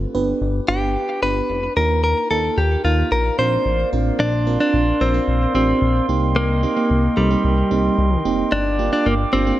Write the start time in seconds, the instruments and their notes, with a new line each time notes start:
Already playing: glass harmonica D4 G4 B4
0.14 analog synth bass G1, fm electric piano B3 D4 G4 B4
0.41 analog synth bass G1
0.68 analog synth bass G1, fm electric piano B3 D4 G4 B4, clean electric guitar G4
1.22 analog synth bass G1, fm electric piano B3 D4 G4 B4, clean electric guitar B4
1.50 analog synth bass F1
1.76 analog synth bass D#2, fm electric piano A#3 D#4 F4 A#4, glass harmonica D#4 F4 A#4, clean electric guitar A#4
2.04 clean electric guitar A#4
2.31 analog synth bass D#2, fm electric piano A#3 D#4 F4 A#4, clean electric guitar A4
2.57 analog synth bass D#2, clean electric guitar G4
2.85 analog synth bass D#2, fm electric piano A#3 D#4 F4 A#4, clean electric guitar F4
3.11 analog synth bass A#1, glass harmonica A#3 C5 D5 F5, clean electric guitar A#4
3.39 analog synth bass A#1, fm electric piano C4 D4 F4 A#4, clean electric guitar C5
3.65 analog synth bass A1
3.92 analog synth bass A1, fm electric piano C4 D4 F4 A#4
4.19 analog synth bass A#1, clean electric guitar D4, glass harmonica A#4 D5 F5 C6
4.47 fm electric piano C4 D4 F4 A#4
4.60 fm electric piano C4 D4 F4 A#4, clean electric guitar D4
4.74 analog synth bass A#1
5.01 analog synth bass A#1, fm electric piano C4 D4 F4 A#4, clean electric guitar C4
5.14 fm electric piano C4 D4 F4 A#4
5.28 analog synth bass A#1
5.55 analog synth bass A1, fm electric piano C4 D4 F4 G4, clean electric guitar C4
5.82 analog synth bass A#1
6.09 analog synth bass C2, fm electric piano A#3 C4 D#4 G4, glass harmonica D#5 G5
6.36 clean electric guitar A#3
6.63 fm electric piano A#3 C4 D#4 G4
6.76 fm electric piano A#3 C4 D#4 G4
6.90 analog synth bass C2
7.17 analog synth bass C2, clean electric guitar G3, fm electric piano A#3 C4 D#4 A4
7.31 fm electric piano A#3 C4 D#4 G4
7.44 analog synth bass C2
7.71 analog synth bass C2, fm electric piano A#3 C4 D#4 G4
7.98 analog synth bass C2
8.25 analog synth bass F1, fm electric piano A#3 C4 D#4 G4
8.52 analog synth bass G1, clean electric guitar D4, glass harmonica F5 D6
8.79 fm electric piano A#3 D4 F4 G4
8.93 fm electric piano A#3 D4 F4 G4, clean electric guitar D4
9.06 analog synth bass G1, clean electric guitar A#3
9.33 analog synth bass G1, fm electric piano A#3 D4 F4 G4, clean electric guitar C4
9.47 fm electric piano A#3 D4 F4 G4